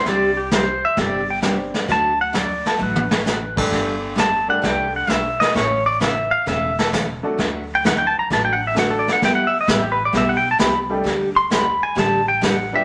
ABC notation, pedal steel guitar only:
X:1
M:4/4
L:1/16
Q:"Swing" 1/4=131
K:G
V:1 name="Pedal steel guitar"
d2 G2 c2 e2 d2 g2 z4 | a2 f2 d2 A2 B8 | z4 a2 f2 g2 f2 e2 _e2 | ^c2 d2 e2 =f2 e2 A2 z4 |
z3 g f g a _b a g f e f A d f | g f e _e =e G B d e f g a b2 z2 | z2 c'2 b2 _a2 =a2 g2 f2 e2 |]